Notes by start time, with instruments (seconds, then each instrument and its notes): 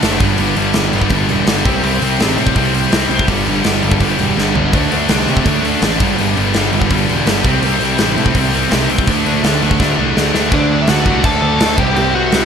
Already playing: distorted electric guitar D3 F#3 A3 D4
0.02 picked electric bass F#1, distorted electric guitar D3 A3 D4, snare, open hi-hat
0.20 picked electric bass G1, distorted electric guitar G2 D3 G3 B3 D4, kick, open hi-hat
0.38 picked electric bass G1, distorted electric guitar G2 D3 G3, open hi-hat
0.57 picked electric bass G1, distorted electric guitar G2 D3 G3, open hi-hat
0.74 picked electric bass G1, distorted electric guitar G2 D3 G3, snare, open hi-hat
0.92 picked electric bass G1, distorted electric guitar G2 D3 G3, open hi-hat
1.02 kick
1.10 picked electric bass G1, distorted electric guitar G2 D3 G3, kick, open hi-hat
1.29 picked electric bass E1, distorted electric guitar G2 D3 G3, open hi-hat
1.46 picked electric bass G1, distorted electric guitar G2 D3 G3 B3 D4, snare, open hi-hat
1.65 picked electric bass C2, distorted electric guitar C3 G3 C4 E4, kick, open hi-hat
1.83 picked electric bass C2, distorted electric guitar C3 G3 C4, open hi-hat
2.01 picked electric bass C2, distorted electric guitar C3 G3 C4, open hi-hat
2.20 picked electric bass A1, distorted electric guitar C3 G3 C4, snare, open hi-hat
2.37 picked electric bass A2, distorted electric guitar C3 G3 C4, open hi-hat
2.47 kick
2.55 picked electric bass C2, distorted electric guitar C3 G3 C4, kick, open hi-hat
2.74 distorted electric guitar C3 G3 C4, open hi-hat
2.91 picked electric bass C2, distorted electric guitar C3 G3 C4 E4, snare, open hi-hat
3.09 picked electric bass C2, distorted electric guitar C3 G3 C4, open hi-hat
3.19 kick
3.28 picked electric bass G1, distorted electric guitar G2 D3 G3 B3 D4, kick, open hi-hat
3.46 picked electric bass G1, distorted electric guitar G2 D3 G3, open hi-hat
3.64 picked electric bass G1, distorted electric guitar G2 D3 G3, snare, open hi-hat
3.83 picked electric bass G1, distorted electric guitar G2 D3 G3, open hi-hat
3.92 kick
4.00 picked electric bass G1, distorted electric guitar G2 D3 G3, kick, open hi-hat
4.19 picked electric bass E1, distorted electric guitar G2 D3 G3, open hi-hat
4.37 picked electric bass G1, distorted electric guitar G2 D3 G3, snare
4.55 picked electric bass G1, distorted electric guitar G2 D3 G3 B3 D4, floor tom
4.73 picked electric bass D2, distorted electric guitar D3 F#3 A3 D4, kick, open hi-hat
4.91 picked electric bass D2, distorted electric guitar D3 A3 D4, open hi-hat
5.08 picked electric bass C2, distorted electric guitar D3 A3 D4, snare, open hi-hat
5.27 picked electric bass C3, distorted electric guitar D3 A3 D4, open hi-hat
5.37 kick
5.44 picked electric bass D2, distorted electric guitar D3 A3 D4, kick, open hi-hat
5.62 distorted electric guitar D3 A3 D4, open hi-hat
5.81 picked electric bass A1, distorted electric guitar D3 A3 D4, snare, open hi-hat
5.99 picked electric bass G1, distorted electric guitar G2 D3 G3 B3 D4, kick, open hi-hat
6.18 picked electric bass G1, distorted electric guitar G2 D3 G3, open hi-hat
6.35 picked electric bass G1, distorted electric guitar G2 D3 G3, open hi-hat
6.54 picked electric bass G1, distorted electric guitar G2 D3 G3, snare, open hi-hat
6.72 picked electric bass G1, distorted electric guitar G2 D3 G3, open hi-hat
6.82 kick
6.90 picked electric bass G1, distorted electric guitar G2 D3 G3, kick, open hi-hat
7.08 picked electric bass E1, distorted electric guitar G2 D3 G3, open hi-hat
7.26 picked electric bass G1, distorted electric guitar G2 D3 G3 B3 D4, snare, open hi-hat
7.44 picked electric bass C2, distorted electric guitar C3 G3 C4 E4, kick, open hi-hat
7.62 picked electric bass C2, distorted electric guitar C3 G3 C4, open hi-hat
7.79 picked electric bass C2, distorted electric guitar C3 G3 C4, open hi-hat
7.83 distorted electric guitar C3 C4
7.98 picked electric bass A1, distorted electric guitar C3 G3 C4, snare, open hi-hat
8.15 picked electric bass A2, distorted electric guitar C3 G3 C4, open hi-hat
8.20 distorted electric guitar C4
8.26 kick
8.34 picked electric bass C2, distorted electric guitar C3 G3 C4, kick, open hi-hat
8.52 distorted electric guitar C3 G3 C4, open hi-hat
8.69 picked electric bass C2, distorted electric guitar C3 G3 C4 E4, snare, open hi-hat
8.89 picked electric bass C2, distorted electric guitar C3 G3 C4, open hi-hat
8.98 kick
9.06 picked electric bass D2, distorted electric guitar D3 F#3 A3 D4, kick, open hi-hat
9.24 picked electric bass D2, distorted electric guitar D3 A3 D4, open hi-hat
9.43 picked electric bass D2, distorted electric guitar D3 A3 D4, snare, open hi-hat
9.61 picked electric bass D2, distorted electric guitar D3 A3 D4, open hi-hat
9.71 kick
9.79 picked electric bass D2, distorted electric guitar D3 A3 D4, kick, snare
9.98 picked electric bass C2, distorted electric guitar D3 A3 D4
10.16 picked electric bass D2, distorted electric guitar D3 A3 D4, snare
10.34 picked electric bass D2, distorted electric guitar D3 F#3 A3 D4, snare
10.52 picked electric bass D2, distorted electric guitar D3 F#3 A3 D4, lead electric guitar D4 D5, kick, crash
10.82 lead electric guitar E5
10.87 picked electric bass D2, distorted electric guitar D3 F#3 A3 D4, lead electric guitar F#4 F#5, snare, crash
11.06 picked electric bass C2, distorted electric guitar D3 F#3 A3 D4, kick
11.23 picked electric bass D2, distorted electric guitar D3 F#3 A3 D4, lead electric guitar A4 A5, kick, crash
11.42 picked electric bass D2, lead electric guitar A4 A5
11.60 picked electric bass D2, distorted electric guitar D3 F#3 A3 D4, snare, crash
11.77 picked electric bass C2, distorted electric guitar C3 G3 C4 E4, lead electric guitar G4 G5, kick
11.95 picked electric bass C2, distorted electric guitar C3 G3 C4 E4, lead electric guitar G4 G5, crash
12.14 lead electric guitar F#4 F#5
12.31 picked electric bass C2, distorted electric guitar C3 G3 C4 E4, snare, crash